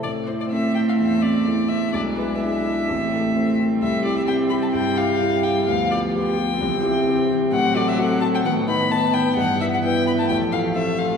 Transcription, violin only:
X:1
M:4/4
L:1/16
Q:1/4=130
K:Am
V:1 name="Violin"
d2 c d e2 g f e2 d4 e2 | d2 B2 e8- e2 z2 | e2 d e g2 b a g2 f4 g2 | f2 d2 g8- g2 z2 |
[K:Em] f2 d e f2 a g f2 b2 a2 g2 | f2 e f g2 b a g2 =f2 e2 f2 |]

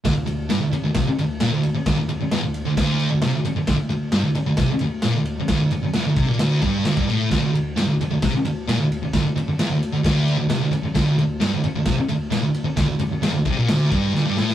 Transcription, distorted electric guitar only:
X:1
M:4/4
L:1/16
Q:1/4=132
K:Cmix
V:1 name="Distorted electric guitar" clef=bass
D,, D,, D,,2 G,, D,, z D,, C, z D,,2 B,, D,,2 z | D,, D,, z2 E,, D,,2 D,, D,,3 D,, C, D,, z2 | D,, D,, D,,2 G,, D,, z D,, C, z D,,2 B,, D,,2 z | D,, D,, z2 E,, D,, C, B,, D,,2 G,,2 D,, G,, A,,2 |
D,, D,, D,,2 G,, D,, z D,, C, z D,,2 B,, D,,2 z | D,, D,, z2 E,, D,,2 D,, D,,3 D,, C, D,, z2 | D,, D,, D,,2 G,, D,, z D,, C, z D,,2 B,, D,,2 z | D,, D,, z2 E,, D,, C, B,, D,,2 G,,2 D,, G,, A,,2 |]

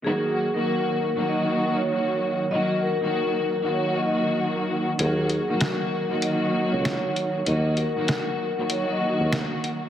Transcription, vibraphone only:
X:1
M:4/4
L:1/16
Q:"Swing 16ths" 1/4=97
K:Ebm
V:1 name="Vibraphone"
A3 B4- B e3 d4- d | e2 B6 d e e2 z4 | A3 B4- B e3 d4- d | e2 B6 d e e2 z4 |]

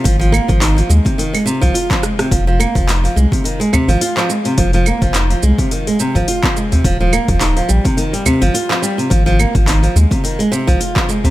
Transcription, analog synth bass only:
X:1
M:4/4
L:1/16
Q:"Swing 16ths" 1/4=106
K:Fm
V:1 name="Analog synth bass" clef=bass
A,,,2 z A,,,2 z E,, z4 C,, z4 | F,,,2 z F,,,2 z C,, z4 A,,, z4 | F,,,2 z F,,,2 z C,, z4 A,,, z4 | E,,,2 z E,,,2 z B,,, z4 G,,, z4 |
A,,,2 z A,,,2 z E,, z4 C,, z4 |]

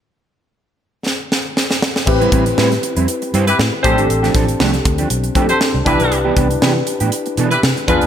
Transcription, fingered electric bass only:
X:1
M:4/4
L:1/16
Q:"Swing 16ths" 1/4=119
K:Am
V:1 name="Fingered electric bass" clef=bass
z16 | A,,,2 A,,,2 A,,2 z F,, z2 G,,2 A,, z A,,, ^G,,, | A,,,2 A,,,2 C,,2 D,,2 B,,,2 z3 C,, C,, B,,, | C,,2 C,,2 C,2 z A,, z2 B,,2 C, z E,, ^D,, |]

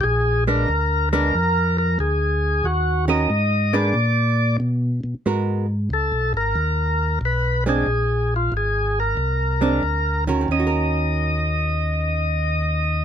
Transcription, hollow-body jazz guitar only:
X:1
M:4/4
L:1/8
Q:"Swing" 1/4=92
K:Bbm
V:1 name="Hollow-body jazz guitar"
z [A,_C=D] z [A,CD] z4 | z [E,DGB] z [B,=DA_c] z4 | [A,_CGB] z6 [A,=C=D] | z4 z [A,C=D] z [E,_DGB] |
[E,DGB]8 |]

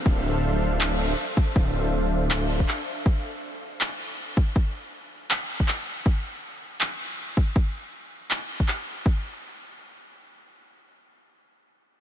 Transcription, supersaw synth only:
X:1
M:4/4
L:1/8
Q:"Swing 16ths" 1/4=160
K:Dm
V:1 name="Supersaw synth"
[DAcef]6 z2 | [DAcef]6 z2 | z8 | z8 |
z8 | z8 | z8 | z8 |]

